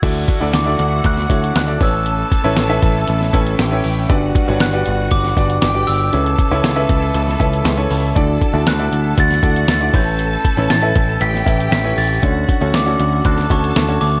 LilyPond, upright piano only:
<<
  \new Staff \with { instrumentName = "Upright piano" } { \time 4/4 \key a \mixolydian \tempo 4 = 118 <d' e' fis' a' d''>8 r16 <d' e' fis' a' d''>8 <d' e' fis' a' d''>4 r16 <d' e' fis' a' cis''>8 r16 <d' e' fis' a' d''>16 <cis' e' a' b' cis''>8~ | <cis' e' a' b' cis''>8 r16 <cis' e' a' b' cis''>8 <cis' e' a' b' e''>4 r16 <cis' e' a' b' cis''>8 r16 <cis' e' a' b' cis''>8 r16 | <d' fis' g' b' d''>8 r16 <d' fis' g' b' cis''>8 <d' fis' g' b' d''>4 r16 <d' fis' g' b' d''>8 r16 <d' fis' g' b' d''>8 r16 | <cis' e' a' b' cis''>8 r16 <cis' e' a' b' cis''>8 <cis' e' a' b' e''>4 r16 <cis' e' a' b' e''>8 r16 <cis' e' a' b' cis''>8 r16 |
<d' e' fis' a' d''>8 r16 <d' e' fis' a' d''>8 <d' e' fis' a' d''>4 r16 <d' e' fis' a' d''>8 r16 <d' e' fis' a' d''>16 <cis' e' a' b' cis''>8~ | <cis' e' a' b' cis''>8 r16 <cis' e' a' b' cis''>8 <cis' e' a' b' e''>4 r16 <cis' e' a' b' e''>8 r16 <cis' e' a' b' cis''>8 r16 | <cis' d' fis' a' cis''>8 r16 <cis' d' fis' a' cis''>8 <cis' d' fis' a'>4 r16 <cis' d' fis' a' cis''>8 r16 <cis' d' fis' a' cis''>8 r16 | }
  \new Staff \with { instrumentName = "Upright piano" } { \clef bass \time 4/4 \key a \mixolydian d4. r2 a,8~ | a,4 r2. | g,4. r2 r8 | cis4. r2 r8 |
d4. r2 a,8~ | a,4 r2. | d4. r2 r8 | }
>>